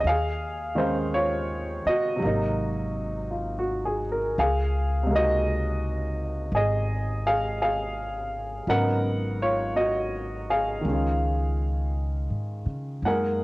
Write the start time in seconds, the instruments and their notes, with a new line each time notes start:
0.00 upright bass D#2, grand piano D#5
0.07 grand piano G#4 F5
0.75 grand piano D#3 G#3 C#4 D#4 C5
0.79 grand piano F5
1.14 grand piano F4 C#5
1.86 grand piano F#4 D#5, muted upright bass stroke
2.16 grand piano C3 F#3
2.22 upright bass G#1, grand piano A#3
2.27 grand piano D#4
3.31 grand piano F4
3.59 grand piano F#4
3.85 grand piano G#4
4.12 grand piano A#4
4.38 upright bass C#2, grand piano G#4 F5
5.03 grand piano C3 G#3
5.10 grand piano A#3
5.15 grand piano D#4 F#4 D#5
6.52 upright bass G#1, grand piano G#4
6.56 grand piano D#5
7.27 grand piano G#4 F5
7.62 grand piano G#4 F5
8.67 upright bass G#1, grand piano C#3 F#3 B3 D#4 A#4 F#5
9.42 grand piano F4 C#5
9.76 grand piano F#4 D#5
10.50 grand piano G#4 F5
10.81 upright bass C#2, grand piano D#3 G#3
10.89 grand piano C#4 F4
12.30 upright bass G#2
12.66 upright bass C#3
13.02 upright bass F#2, grand piano G#3 A#3 D#4 F#5
13.07 grand piano G#4 A#4